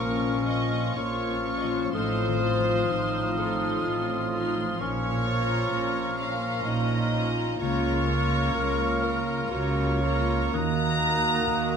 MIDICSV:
0, 0, Header, 1, 13, 480
1, 0, Start_track
1, 0, Key_signature, -5, "minor"
1, 0, Tempo, 966184
1, 964, Time_signature, 3, 2, 24, 8
1, 1922, Tempo, 923077
1, 2882, Tempo, 944882
1, 4322, Tempo, 963082
1, 4802, Tempo, 1020408
1, 5282, Tempo, 923077
1, 5924, End_track
2, 0, Start_track
2, 0, Title_t, "Flute"
2, 0, Program_c, 0, 73
2, 0, Note_on_c, 0, 89, 58
2, 461, Note_off_c, 0, 89, 0
2, 481, Note_on_c, 0, 89, 56
2, 954, Note_off_c, 0, 89, 0
2, 962, Note_on_c, 0, 89, 59
2, 2386, Note_off_c, 0, 89, 0
2, 2405, Note_on_c, 0, 89, 64
2, 3686, Note_off_c, 0, 89, 0
2, 3844, Note_on_c, 0, 89, 61
2, 4783, Note_off_c, 0, 89, 0
2, 4805, Note_on_c, 0, 89, 60
2, 5284, Note_on_c, 0, 90, 62
2, 5291, Note_off_c, 0, 89, 0
2, 5924, Note_off_c, 0, 90, 0
2, 5924, End_track
3, 0, Start_track
3, 0, Title_t, "Oboe"
3, 0, Program_c, 1, 68
3, 0, Note_on_c, 1, 85, 60
3, 463, Note_off_c, 1, 85, 0
3, 480, Note_on_c, 1, 85, 53
3, 953, Note_off_c, 1, 85, 0
3, 966, Note_on_c, 1, 87, 63
3, 2388, Note_off_c, 1, 87, 0
3, 2410, Note_on_c, 1, 85, 60
3, 3689, Note_off_c, 1, 85, 0
3, 3850, Note_on_c, 1, 85, 68
3, 4786, Note_off_c, 1, 85, 0
3, 4801, Note_on_c, 1, 85, 57
3, 5273, Note_off_c, 1, 85, 0
3, 5286, Note_on_c, 1, 87, 66
3, 5924, Note_off_c, 1, 87, 0
3, 5924, End_track
4, 0, Start_track
4, 0, Title_t, "Violin section"
4, 0, Program_c, 2, 48
4, 0, Note_on_c, 2, 85, 51
4, 229, Note_off_c, 2, 85, 0
4, 238, Note_on_c, 2, 85, 51
4, 714, Note_off_c, 2, 85, 0
4, 726, Note_on_c, 2, 85, 47
4, 959, Note_on_c, 2, 84, 49
4, 960, Note_off_c, 2, 85, 0
4, 1195, Note_off_c, 2, 84, 0
4, 1201, Note_on_c, 2, 84, 48
4, 1674, Note_off_c, 2, 84, 0
4, 1680, Note_on_c, 2, 84, 47
4, 2152, Note_off_c, 2, 84, 0
4, 2162, Note_on_c, 2, 84, 50
4, 2401, Note_off_c, 2, 84, 0
4, 2638, Note_on_c, 2, 82, 55
4, 3101, Note_off_c, 2, 82, 0
4, 3107, Note_on_c, 2, 82, 50
4, 3589, Note_off_c, 2, 82, 0
4, 3597, Note_on_c, 2, 82, 52
4, 3830, Note_off_c, 2, 82, 0
4, 3836, Note_on_c, 2, 82, 49
4, 4073, Note_off_c, 2, 82, 0
4, 4079, Note_on_c, 2, 82, 58
4, 4546, Note_off_c, 2, 82, 0
4, 4552, Note_on_c, 2, 82, 53
4, 5028, Note_off_c, 2, 82, 0
4, 5038, Note_on_c, 2, 82, 56
4, 5277, Note_off_c, 2, 82, 0
4, 5529, Note_on_c, 2, 82, 54
4, 5924, Note_off_c, 2, 82, 0
4, 5924, End_track
5, 0, Start_track
5, 0, Title_t, "Violin section"
5, 0, Program_c, 3, 48
5, 0, Note_on_c, 3, 70, 91
5, 219, Note_off_c, 3, 70, 0
5, 238, Note_on_c, 3, 75, 74
5, 481, Note_off_c, 3, 75, 0
5, 481, Note_on_c, 3, 73, 64
5, 786, Note_on_c, 3, 75, 52
5, 787, Note_off_c, 3, 73, 0
5, 831, Note_off_c, 3, 75, 0
5, 832, Note_on_c, 3, 73, 54
5, 873, Note_on_c, 3, 72, 58
5, 876, Note_off_c, 3, 73, 0
5, 917, Note_on_c, 3, 73, 55
5, 919, Note_off_c, 3, 72, 0
5, 961, Note_on_c, 3, 72, 89
5, 962, Note_off_c, 3, 73, 0
5, 1671, Note_off_c, 3, 72, 0
5, 1685, Note_on_c, 3, 69, 66
5, 2165, Note_off_c, 3, 69, 0
5, 2402, Note_on_c, 3, 73, 89
5, 3096, Note_off_c, 3, 73, 0
5, 3116, Note_on_c, 3, 77, 76
5, 3360, Note_off_c, 3, 77, 0
5, 3361, Note_on_c, 3, 75, 82
5, 3843, Note_off_c, 3, 75, 0
5, 3846, Note_on_c, 3, 73, 93
5, 4550, Note_off_c, 3, 73, 0
5, 4560, Note_on_c, 3, 70, 72
5, 4802, Note_off_c, 3, 70, 0
5, 4804, Note_on_c, 3, 73, 81
5, 5282, Note_on_c, 3, 82, 109
5, 5284, Note_off_c, 3, 73, 0
5, 5924, Note_off_c, 3, 82, 0
5, 5924, End_track
6, 0, Start_track
6, 0, Title_t, "Clarinet"
6, 0, Program_c, 4, 71
6, 0, Note_on_c, 4, 61, 62
6, 484, Note_on_c, 4, 65, 63
6, 491, Note_off_c, 4, 61, 0
6, 966, Note_on_c, 4, 69, 66
6, 974, Note_off_c, 4, 65, 0
6, 1203, Note_off_c, 4, 69, 0
6, 1206, Note_on_c, 4, 65, 57
6, 1447, Note_on_c, 4, 63, 62
6, 1454, Note_off_c, 4, 65, 0
6, 1922, Note_on_c, 4, 65, 62
6, 1930, Note_off_c, 4, 63, 0
6, 2408, Note_off_c, 4, 65, 0
6, 2415, Note_on_c, 4, 61, 62
6, 2652, Note_on_c, 4, 65, 62
6, 2660, Note_off_c, 4, 61, 0
6, 3226, Note_off_c, 4, 65, 0
6, 3363, Note_on_c, 4, 63, 66
6, 3842, Note_on_c, 4, 65, 69
6, 3850, Note_off_c, 4, 63, 0
6, 4323, Note_on_c, 4, 70, 72
6, 4331, Note_off_c, 4, 65, 0
6, 4799, Note_off_c, 4, 70, 0
6, 4802, Note_on_c, 4, 66, 66
6, 5038, Note_on_c, 4, 65, 57
6, 5045, Note_off_c, 4, 66, 0
6, 5278, Note_off_c, 4, 65, 0
6, 5281, Note_on_c, 4, 63, 66
6, 5768, Note_on_c, 4, 66, 67
6, 5775, Note_off_c, 4, 63, 0
6, 5924, Note_off_c, 4, 66, 0
6, 5924, End_track
7, 0, Start_track
7, 0, Title_t, "Viola section"
7, 0, Program_c, 5, 48
7, 0, Note_on_c, 5, 58, 51
7, 0, Note_on_c, 5, 65, 51
7, 231, Note_off_c, 5, 58, 0
7, 231, Note_off_c, 5, 65, 0
7, 245, Note_on_c, 5, 58, 46
7, 245, Note_on_c, 5, 65, 51
7, 718, Note_off_c, 5, 58, 0
7, 718, Note_off_c, 5, 65, 0
7, 724, Note_on_c, 5, 65, 50
7, 726, Note_on_c, 5, 58, 53
7, 959, Note_off_c, 5, 65, 0
7, 960, Note_off_c, 5, 58, 0
7, 964, Note_on_c, 5, 63, 48
7, 964, Note_on_c, 5, 65, 51
7, 1199, Note_off_c, 5, 63, 0
7, 1199, Note_off_c, 5, 65, 0
7, 1206, Note_on_c, 5, 63, 50
7, 1206, Note_on_c, 5, 65, 53
7, 1679, Note_off_c, 5, 63, 0
7, 1679, Note_off_c, 5, 65, 0
7, 1693, Note_on_c, 5, 63, 50
7, 1694, Note_on_c, 5, 65, 45
7, 2159, Note_off_c, 5, 63, 0
7, 2160, Note_off_c, 5, 65, 0
7, 2168, Note_on_c, 5, 65, 50
7, 2170, Note_on_c, 5, 63, 53
7, 2404, Note_off_c, 5, 65, 0
7, 2405, Note_off_c, 5, 63, 0
7, 2644, Note_on_c, 5, 61, 54
7, 2644, Note_on_c, 5, 65, 52
7, 3108, Note_off_c, 5, 61, 0
7, 3108, Note_off_c, 5, 65, 0
7, 3118, Note_on_c, 5, 65, 51
7, 3119, Note_on_c, 5, 61, 49
7, 3594, Note_off_c, 5, 65, 0
7, 3595, Note_off_c, 5, 61, 0
7, 3602, Note_on_c, 5, 61, 53
7, 3602, Note_on_c, 5, 65, 53
7, 3833, Note_off_c, 5, 65, 0
7, 3837, Note_off_c, 5, 61, 0
7, 3838, Note_on_c, 5, 58, 51
7, 3839, Note_on_c, 5, 65, 49
7, 4068, Note_off_c, 5, 58, 0
7, 4069, Note_off_c, 5, 65, 0
7, 4074, Note_on_c, 5, 58, 55
7, 4075, Note_on_c, 5, 65, 53
7, 4549, Note_off_c, 5, 58, 0
7, 4550, Note_off_c, 5, 65, 0
7, 4559, Note_on_c, 5, 65, 52
7, 4561, Note_on_c, 5, 58, 50
7, 5031, Note_off_c, 5, 65, 0
7, 5032, Note_off_c, 5, 58, 0
7, 5040, Note_on_c, 5, 58, 58
7, 5041, Note_on_c, 5, 65, 56
7, 5277, Note_off_c, 5, 58, 0
7, 5278, Note_off_c, 5, 65, 0
7, 5524, Note_on_c, 5, 58, 58
7, 5525, Note_on_c, 5, 66, 57
7, 5924, Note_off_c, 5, 58, 0
7, 5924, Note_off_c, 5, 66, 0
7, 5924, End_track
8, 0, Start_track
8, 0, Title_t, "Harp"
8, 0, Program_c, 6, 46
8, 0, Note_on_c, 6, 46, 55
8, 0, Note_on_c, 6, 53, 43
8, 0, Note_on_c, 6, 58, 42
8, 0, Note_on_c, 6, 65, 57
8, 2, Note_on_c, 6, 61, 45
8, 163, Note_on_c, 6, 70, 42
8, 317, Note_off_c, 6, 65, 0
8, 323, Note_on_c, 6, 65, 48
8, 479, Note_off_c, 6, 70, 0
8, 485, Note_on_c, 6, 70, 45
8, 642, Note_off_c, 6, 61, 0
8, 648, Note_on_c, 6, 61, 44
8, 802, Note_off_c, 6, 53, 0
8, 808, Note_on_c, 6, 53, 47
8, 965, Note_on_c, 6, 45, 54
8, 984, Note_off_c, 6, 46, 0
8, 984, Note_off_c, 6, 58, 0
8, 984, Note_off_c, 6, 70, 0
8, 985, Note_off_c, 6, 61, 0
8, 1127, Note_on_c, 6, 51, 45
8, 1281, Note_off_c, 6, 53, 0
8, 1287, Note_on_c, 6, 53, 43
8, 1442, Note_off_c, 6, 65, 0
8, 1448, Note_on_c, 6, 65, 48
8, 1609, Note_on_c, 6, 75, 43
8, 1760, Note_off_c, 6, 65, 0
8, 1766, Note_on_c, 6, 65, 44
8, 1918, Note_off_c, 6, 75, 0
8, 1924, Note_on_c, 6, 75, 47
8, 2079, Note_off_c, 6, 65, 0
8, 2085, Note_on_c, 6, 65, 47
8, 2239, Note_off_c, 6, 53, 0
8, 2245, Note_on_c, 6, 53, 48
8, 2405, Note_on_c, 6, 46, 58
8, 2428, Note_off_c, 6, 45, 0
8, 2428, Note_off_c, 6, 75, 0
8, 2429, Note_off_c, 6, 51, 0
8, 2558, Note_off_c, 6, 53, 0
8, 2565, Note_on_c, 6, 53, 43
8, 2721, Note_on_c, 6, 58, 44
8, 2877, Note_off_c, 6, 65, 0
8, 2883, Note_on_c, 6, 65, 48
8, 3036, Note_on_c, 6, 73, 47
8, 3200, Note_on_c, 6, 70, 48
8, 3357, Note_off_c, 6, 73, 0
8, 3363, Note_on_c, 6, 73, 45
8, 3522, Note_off_c, 6, 65, 0
8, 3528, Note_on_c, 6, 65, 48
8, 3682, Note_off_c, 6, 58, 0
8, 3688, Note_on_c, 6, 58, 48
8, 3847, Note_on_c, 6, 49, 59
8, 3861, Note_off_c, 6, 46, 0
8, 4004, Note_on_c, 6, 61, 46
8, 4158, Note_off_c, 6, 58, 0
8, 4164, Note_on_c, 6, 58, 45
8, 4318, Note_off_c, 6, 65, 0
8, 4324, Note_on_c, 6, 65, 52
8, 4477, Note_off_c, 6, 70, 0
8, 4483, Note_on_c, 6, 70, 49
8, 4549, Note_off_c, 6, 53, 0
8, 4638, Note_off_c, 6, 65, 0
8, 4644, Note_on_c, 6, 65, 51
8, 4799, Note_off_c, 6, 70, 0
8, 4805, Note_on_c, 6, 70, 51
8, 4957, Note_off_c, 6, 65, 0
8, 4963, Note_on_c, 6, 65, 47
8, 5119, Note_off_c, 6, 58, 0
8, 5124, Note_on_c, 6, 58, 48
8, 5284, Note_on_c, 6, 51, 59
8, 5297, Note_off_c, 6, 73, 0
8, 5305, Note_off_c, 6, 61, 0
8, 5305, Note_off_c, 6, 65, 0
8, 5306, Note_off_c, 6, 49, 0
8, 5453, Note_on_c, 6, 63, 47
8, 5606, Note_off_c, 6, 58, 0
8, 5612, Note_on_c, 6, 58, 46
8, 5770, Note_on_c, 6, 66, 47
8, 5921, Note_off_c, 6, 70, 0
8, 5924, Note_off_c, 6, 51, 0
8, 5924, Note_off_c, 6, 58, 0
8, 5924, Note_off_c, 6, 63, 0
8, 5924, Note_off_c, 6, 66, 0
8, 5924, End_track
9, 0, Start_track
9, 0, Title_t, "French horn section"
9, 0, Program_c, 7, 60
9, 0, Note_on_c, 7, 61, 59
9, 0, Note_on_c, 7, 65, 60
9, 943, Note_off_c, 7, 61, 0
9, 953, Note_on_c, 7, 60, 57
9, 2385, Note_off_c, 7, 65, 0
9, 2398, Note_on_c, 7, 65, 60
9, 2400, Note_on_c, 7, 58, 59
9, 2402, Note_off_c, 7, 60, 0
9, 5199, Note_off_c, 7, 58, 0
9, 5199, Note_off_c, 7, 65, 0
9, 5279, Note_on_c, 7, 58, 63
9, 5281, Note_on_c, 7, 66, 62
9, 5924, Note_off_c, 7, 58, 0
9, 5924, Note_off_c, 7, 66, 0
9, 5924, End_track
10, 0, Start_track
10, 0, Title_t, "Bassoon"
10, 0, Program_c, 8, 70
10, 0, Note_on_c, 8, 53, 61
10, 464, Note_off_c, 8, 53, 0
10, 482, Note_on_c, 8, 53, 54
10, 954, Note_off_c, 8, 53, 0
10, 968, Note_on_c, 8, 53, 55
10, 2389, Note_off_c, 8, 53, 0
10, 2409, Note_on_c, 8, 53, 61
10, 3688, Note_off_c, 8, 53, 0
10, 3843, Note_on_c, 8, 58, 59
10, 4783, Note_off_c, 8, 58, 0
10, 4803, Note_on_c, 8, 58, 59
10, 5274, Note_off_c, 8, 58, 0
10, 5285, Note_on_c, 8, 58, 64
10, 5924, Note_off_c, 8, 58, 0
10, 5924, End_track
11, 0, Start_track
11, 0, Title_t, "Cello section"
11, 0, Program_c, 10, 48
11, 1, Note_on_c, 10, 46, 62
11, 425, Note_off_c, 10, 46, 0
11, 481, Note_on_c, 10, 46, 62
11, 907, Note_off_c, 10, 46, 0
11, 961, Note_on_c, 10, 45, 67
11, 1388, Note_off_c, 10, 45, 0
11, 1445, Note_on_c, 10, 45, 61
11, 1866, Note_off_c, 10, 45, 0
11, 1921, Note_on_c, 10, 45, 62
11, 2350, Note_off_c, 10, 45, 0
11, 2405, Note_on_c, 10, 46, 63
11, 2825, Note_off_c, 10, 46, 0
11, 2879, Note_on_c, 10, 46, 65
11, 3302, Note_off_c, 10, 46, 0
11, 3360, Note_on_c, 10, 46, 69
11, 3786, Note_off_c, 10, 46, 0
11, 3840, Note_on_c, 10, 49, 68
11, 4264, Note_off_c, 10, 49, 0
11, 4321, Note_on_c, 10, 49, 63
11, 4745, Note_off_c, 10, 49, 0
11, 4802, Note_on_c, 10, 49, 67
11, 5227, Note_off_c, 10, 49, 0
11, 5284, Note_on_c, 10, 51, 70
11, 5712, Note_off_c, 10, 51, 0
11, 5769, Note_on_c, 10, 51, 68
11, 5924, Note_off_c, 10, 51, 0
11, 5924, End_track
12, 0, Start_track
12, 0, Title_t, "Timpani"
12, 0, Program_c, 11, 47
12, 0, Note_on_c, 11, 46, 72
12, 218, Note_off_c, 11, 46, 0
12, 5924, End_track
13, 0, Start_track
13, 0, Title_t, "Double bass section"
13, 0, Program_c, 12, 48
13, 2, Note_on_c, 12, 34, 59
13, 425, Note_off_c, 12, 34, 0
13, 483, Note_on_c, 12, 34, 58
13, 909, Note_off_c, 12, 34, 0
13, 962, Note_on_c, 12, 33, 59
13, 1389, Note_off_c, 12, 33, 0
13, 1445, Note_on_c, 12, 33, 59
13, 1866, Note_off_c, 12, 33, 0
13, 1920, Note_on_c, 12, 33, 60
13, 2350, Note_off_c, 12, 33, 0
13, 2407, Note_on_c, 12, 34, 69
13, 2826, Note_off_c, 12, 34, 0
13, 2880, Note_on_c, 12, 34, 61
13, 3303, Note_off_c, 12, 34, 0
13, 3361, Note_on_c, 12, 34, 58
13, 3787, Note_off_c, 12, 34, 0
13, 3843, Note_on_c, 12, 37, 71
13, 4266, Note_off_c, 12, 37, 0
13, 4322, Note_on_c, 12, 37, 65
13, 4746, Note_off_c, 12, 37, 0
13, 4803, Note_on_c, 12, 37, 64
13, 5227, Note_off_c, 12, 37, 0
13, 5283, Note_on_c, 12, 39, 63
13, 5711, Note_off_c, 12, 39, 0
13, 5765, Note_on_c, 12, 39, 62
13, 5924, Note_off_c, 12, 39, 0
13, 5924, End_track
0, 0, End_of_file